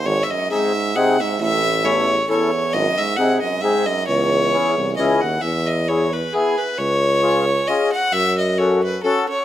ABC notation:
X:1
M:3/4
L:1/16
Q:"Swing" 1/4=133
K:C#m
V:1 name="Fiddle"
c3/2 e/2 d2 e4 f2 e2 | e4 c4 c4 | d2 e2 f2 d2 e2 d2 | c8 d2 f2 |
[K:E] e2 d2 c2 B2 G2 B2 | c8 d2 f2 | e2 d2 c2 B2 A2 c2 |]
V:2 name="Accordion"
z4 [^B,DG]2 z2 [B,DG]2 z2 | z4 [CEA]2 z2 [CEA]2 z2 | z4 [^B,DG]2 z2 [B,DG]2 z2 | z4 [CEG]2 z2 [CEG]2 z2 |
[K:E] z4 [B,EG]2 z2 [B,EG]2 z2 | z4 [C^EG]2 z2 [CEG]2 z2 | z4 [CFA]2 z2 [CFA]2 z2 |]
V:3 name="Euphonium" clef=bass
G,,3/2 G,,/2 F,,2 G,,4 ^B,,2 G,,2 | A,,4 E,,4 E,,4 | F,,2 G,,2 ^B,,2 F,,2 G,,2 F,,2 | E,,8- E,,2 z2 |
[K:E] z12 | z12 | z12 |]
V:4 name="Tuba" clef=bass
G,,,2 z8 z2 | A,,,12 | G,,,2 z8 z2 | C,,6 ^B,,,2 C,,2 D,,2 |
[K:E] E,,12 | C,,12 | F,,12 |]